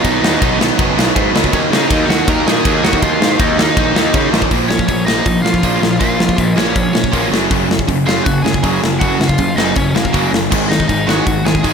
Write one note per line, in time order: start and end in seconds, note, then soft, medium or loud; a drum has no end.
0.03 0.18 B1 loud
0.03 0.20 B2 loud
0.03 0.21 D#3 medium
0.03 0.22 F#3 loud
0.03 0.22 B3 loud
0.03 0.21 D#4 medium
0.03 0.23 D#4 loud
0.03 0.20 D#5 medium
0.03 kick medium
0.03 ride medium
0.21 0.35 D#2 medium
0.21 0.39 B2 medium
0.21 0.39 D#3 medium
0.21 0.40 F#3 medium
0.21 0.40 B3 loud
0.21 0.41 D#4 loud
0.21 0.58 D#4 medium
0.21 0.57 D#5 medium
0.21 snare loud
0.40 0.69 B1 medium
0.40 0.58 B2 medium
0.40 0.59 D#3 medium
0.40 0.60 F#3 medium
0.40 0.59 B3 loud
0.40 0.61 D#4 loud
0.40 kick loud
0.40 ride medium
0.59 0.77 B2 loud
0.59 0.78 D#3 loud
0.59 0.79 F#3 loud
0.59 0.78 B3 loud
0.59 0.79 D#4 loud
0.59 snare loud
0.78 0.92 F#1 medium
0.78 0.95 B2 medium
0.78 0.96 D#3 medium
0.78 0.97 F#3 medium
0.78 0.97 B3 loud
0.78 0.98 D#4 medium
0.78 kick loud
0.78 ride medium
0.96 1.10 B1 medium
0.96 1.14 B2 loud
0.96 1.14 D#3 loud
0.96 1.16 F#3 loud
0.96 1.15 B3 loud
0.96 1.17 D#4 loud
0.96 snare loud
1.15 1.29 G#2 medium
1.15 1.33 B2 medium
1.15 1.33 D#3 medium
1.15 1.34 F#3 medium
1.15 1.34 B3 medium
1.15 1.35 D#4 loud
1.15 kick loud
1.15 ride medium
1.34 1.48 C#2 loud
1.34 1.51 B2 medium
1.34 1.52 D#3 loud
1.34 1.53 F#3 loud
1.34 1.52 B3 loud
1.34 1.54 D#4 loud
1.34 snare loud
1.44 kick medium
1.53 1.67 D#2 loud
1.53 1.71 D#3 loud
1.53 1.72 F#3 loud
1.53 1.72 A#3 loud
1.53 1.59 C#4 medium
1.53 1.72 D#4 loud
1.53 1.58 C#5 medium
1.53 kick medium
1.53 ride medium
1.70 1.84 C#3 medium
1.70 1.90 D#3 medium
1.70 1.90 F#3 medium
1.70 1.91 A#3 medium
1.70 1.91 D#4 loud
1.70 2.07 D#4 medium
1.70 2.09 D#5 medium
1.70 snare loud
1.90 2.04 D#2 medium
1.90 2.08 D#3 medium
1.90 2.09 F#3 loud
1.90 2.10 A#3 medium
1.90 2.10 D#4 loud
1.90 kick loud
1.90 ride medium
2.09 2.22 D#2 medium
2.09 2.26 D#3 loud
2.09 2.27 F#3 loud
2.09 2.28 A#3 loud
2.09 2.27 D#4 loud
2.09 2.27 F#4 medium
2.09 2.28 F#5 medium
2.09 snare loud
2.27 2.41 D#2 loud
2.27 2.44 D#3 medium
2.27 2.45 F#3 medium
2.27 2.46 A#3 loud
2.27 2.46 D#4 loud
2.27 2.45 A#4 medium
2.27 2.47 A#5 medium
2.27 kick loud
2.27 ride medium
2.45 2.60 A#2 medium
2.45 2.63 D#3 loud
2.45 2.64 F#3 loud
2.45 2.65 A#3 loud
2.45 2.65 D#4 loud
2.45 2.82 G#4 medium
2.45 2.84 G#5 loud
2.45 snare loud
2.64 2.79 D#2 medium
2.64 2.82 D#3 medium
2.64 2.82 F#3 medium
2.64 2.83 A#3 medium
2.64 2.83 D#4 loud
2.64 kick loud
2.64 ride medium
2.83 2.97 D#2 medium
2.83 3.00 D#3 loud
2.83 3.01 F#3 loud
2.83 3.02 A#3 loud
2.83 3.02 D#4 loud
2.83 3.00 F#4 medium
2.83 3.02 F#5 medium
2.83 snare loud
2.93 kick medium
3.01 3.16 D#2 loud
3.01 3.19 D#3 loud
3.01 3.20 F#3 loud
3.01 3.20 A#3 loud
3.01 3.21 D#4 loud
3.01 3.37 F4 medium
3.01 3.40 F5 medium
3.01 kick loud
3.01 ride medium
3.20 3.34 G#2 medium
3.20 3.38 D#3 medium
3.20 3.38 F#3 medium
3.20 3.39 A#3 medium
3.20 3.39 D#4 loud
3.20 snare loud
3.39 3.67 D#2 loud
3.39 3.56 D#3 loud
3.39 3.57 F#3 medium
3.39 3.57 A#3 loud
3.39 3.57 D#4 medium
3.39 3.58 D#4 loud
3.39 3.57 D#5 medium
3.39 kick loud
3.39 ride medium
3.57 3.75 D#3 medium
3.57 3.76 F#3 loud
3.57 3.76 A#3 loud
3.57 4.29 D#4 medium
3.57 3.76 D#4 loud
3.57 4.29 D#5 medium
3.57 snare loud
3.76 3.90 A#1 loud
3.76 3.93 D#3 medium
3.76 3.94 F#3 medium
3.76 3.94 A#3 loud
3.76 3.95 D#4 medium
3.76 kick loud
3.76 ride medium
3.94 4.09 D#2 medium
3.94 4.12 D#3 medium
3.94 4.13 F#3 loud
3.94 4.13 A#3 loud
3.94 4.13 D#4 loud
3.94 snare loud
4.13 4.28 C#3 medium
4.13 4.31 D#3 medium
4.13 4.31 F#3 medium
4.13 4.32 A#3 medium
4.13 4.32 D#4 medium
4.13 kick loud
4.13 ride medium
4.32 4.46 A1 medium
4.32 4.50 D#3 medium
4.32 4.50 F#3 medium
4.32 4.50 A#3 loud
4.32 4.50 D#4 medium
4.32 snare loud
4.42 kick medium
4.51 4.82 A#1 medium
4.51 4.68 A#2 medium
4.51 4.69 F3 medium
4.51 4.69 A#3 loud
4.51 kick loud
4.51 open hi-hat medium
4.68 4.87 A#2 medium
4.68 4.87 F3 medium
4.68 4.87 C#4 medium
4.68 4.86 C#5 medium
4.68 snare loud
4.79 kick medium
4.87 5.20 A#1 medium
4.87 5.05 A#2 medium
4.87 5.05 F3 medium
4.87 5.05 C#4 medium
4.87 5.05 C#5 medium
4.87 kick medium
4.87 open hi-hat medium
5.05 5.24 A#2 medium
5.05 5.25 F3 medium
5.05 5.25 A#3 medium
5.05 5.41 D#4 medium
5.05 5.41 D#5 loud
5.05 snare loud
5.26 5.42 A#1 medium
5.26 5.42 A#2 medium
5.26 5.43 F3 medium
5.26 kick loud
5.26 open hi-hat medium
5.42 5.60 A#1 medium
5.42 5.61 A#2 medium
5.42 5.62 F3 medium
5.42 5.96 F4 medium
5.42 5.99 F5 medium
5.42 snare loud
5.54 kick medium
5.63 5.79 A#1 medium
5.63 5.80 A#2 medium
5.63 5.80 F3 medium
5.63 5.81 A#3 medium
5.63 kick medium
5.63 open hi-hat medium
5.81 5.97 A#1 medium
5.81 5.98 A#2 medium
5.81 5.99 F3 medium
5.81 snare loud
5.99 6.16 A#1 medium
5.99 6.17 A#2 medium
5.99 6.18 F3 medium
5.99 6.18 A#3 medium
5.99 6.52 F4 medium
5.99 6.45 F5 medium
5.99 kick loud
5.99 open hi-hat medium
6.18 6.35 A#1 medium
6.18 6.35 A#2 medium
6.18 6.36 F3 medium
6.18 snare loud
6.29 kick medium
6.36 6.54 A#1 medium
6.36 6.54 A#2 medium
6.36 6.54 F3 medium
6.36 kick medium
6.36 open hi-hat medium
6.45 6.58 D#5 medium
6.56 6.72 A#1 medium
6.56 6.73 A#2 medium
6.56 6.74 F3 loud
6.56 6.74 A#3 loud
6.56 7.28 C#4 medium
6.56 7.28 C#5 medium
6.56 snare loud
6.74 6.91 A#1 medium
6.74 6.92 A#2 medium
6.74 6.92 F3 medium
6.74 kick loud
6.74 open hi-hat medium
6.93 7.09 A#1 medium
6.93 7.11 A#2 medium
6.93 7.11 F3 medium
6.93 snare loud
7.04 kick medium
7.12 7.31 A#1 medium
7.12 7.30 A#2 medium
7.12 7.30 F3 medium
7.12 7.31 A#3 medium
7.12 kick loud
7.12 open hi-hat medium
7.31 7.47 F#1 medium
7.31 7.49 F#2 loud
7.31 7.49 C#3 loud
7.31 7.49 F#3 loud
7.31 snare loud
7.50 7.82 F#1 loud
7.50 7.68 F#2 medium
7.50 7.68 C#3 medium
7.50 7.68 F#3 medium
7.50 kick loud
7.50 open hi-hat medium
7.69 7.86 F#2 medium
7.69 7.86 C#3 medium
7.69 snare loud
7.79 kick medium
7.88 8.20 F#1 medium
7.88 8.05 F#2 medium
7.88 8.05 C#3 medium
7.88 kick medium
7.88 open hi-hat medium
8.06 8.24 F#2 medium
8.06 8.24 C#3 medium
8.06 8.25 F#3 loud
8.06 8.24 F4 medium
8.06 8.24 F5 medium
8.06 snare loud
8.24 8.42 F#1 medium
8.24 8.43 F#2 medium
8.24 8.43 C#3 medium
8.24 8.43 F#4 medium
8.24 8.44 F#5 loud
8.24 kick loud
8.24 open hi-hat medium
8.43 8.60 F#1 medium
8.43 8.61 F#2 medium
8.43 8.61 C#3 medium
8.43 8.79 G#4 medium
8.43 8.78 G#5 loud
8.43 snare loud
8.54 kick medium
8.63 8.79 F#1 medium
8.63 8.80 F#2 medium
8.63 8.81 C#3 medium
8.63 8.81 F#3 loud
8.63 kick loud
8.63 open hi-hat medium
8.82 8.98 F#1 medium
8.82 8.99 F#2 medium
8.82 8.99 C#3 medium
8.82 snare loud
8.99 9.17 F#1 loud
8.99 9.18 F#2 medium
8.99 9.18 C#3 loud
8.99 9.19 F#3 loud
8.99 9.27 F#4 medium
8.99 9.28 F#5 loud
8.99 kick loud
8.99 open hi-hat medium
9.20 9.35 F#1 medium
9.20 9.36 F#2 medium
9.20 9.36 C#3 medium
9.20 snare loud
9.28 9.55 F4 medium
9.28 9.57 F5 loud
9.28 kick medium
9.38 9.54 F#1 medium
9.38 9.55 F#2 medium
9.38 9.55 C#3 medium
9.38 kick medium
9.38 open hi-hat medium
9.56 9.72 F#1 medium
9.56 9.75 F#2 medium
9.56 9.75 C#3 medium
9.56 9.75 F#3 loud
9.56 9.75 D#4 medium
9.56 9.76 D#5 medium
9.56 snare loud
9.76 9.92 F#1 medium
9.76 9.92 F#2 medium
9.76 9.93 C#3 medium
9.76 9.94 C#4 medium
9.76 9.94 C#5 medium
9.76 kick loud
9.76 open hi-hat medium
9.94 10.10 F#1 medium
9.94 10.11 F#2 medium
9.94 10.12 C#3 medium
9.94 10.30 A#3 medium
9.94 10.32 A#4 medium
9.94 snare loud
10.05 kick medium
10.13 10.29 F#1 medium
10.13 10.30 F#2 medium
10.13 10.31 C#3 medium
10.13 10.31 F#3 loud
10.13 kick loud
10.13 open hi-hat medium
10.31 10.47 F#1 medium
10.31 10.49 F#2 medium
10.31 10.49 C#3 medium
10.31 snare loud
10.50 10.83 G#1 medium
10.50 10.68 G#2 medium
10.50 10.68 D#3 medium
10.50 10.69 G#3 medium
10.50 kick loud
10.50 crash medium
10.69 10.87 G#2 medium
10.69 10.87 D#3 medium
10.69 10.88 D#4 medium
10.69 10.87 D#5 medium
10.69 snare loud
10.80 kick medium
10.88 11.20 G#1 medium
10.88 11.05 G#2 medium
10.88 11.06 D#3 medium
10.88 11.07 D#4 medium
10.88 11.08 D#5 medium
10.88 kick medium
10.88 open hi-hat medium
11.07 11.25 G#2 medium
11.07 11.25 D#3 loud
11.07 11.25 G#3 loud
11.07 11.43 F#4 medium
11.07 11.46 F#5 medium
11.07 snare loud
11.26 11.42 G#1 medium
11.26 11.43 G#2 medium
11.26 11.43 D#3 medium
11.26 kick loud
11.26 open hi-hat medium
11.44 11.60 G#1 medium
11.44 11.62 G#2 medium
11.44 11.62 D#3 medium
11.44 11.73 G#4 medium
11.44 11.73 G#5 medium
11.44 snare loud
11.55 kick medium
11.63 11.73 G#1 medium
11.63 11.73 G#2 medium
11.63 11.73 D#3 loud
11.63 11.73 G#3 medium
11.63 kick loud
11.63 open hi-hat medium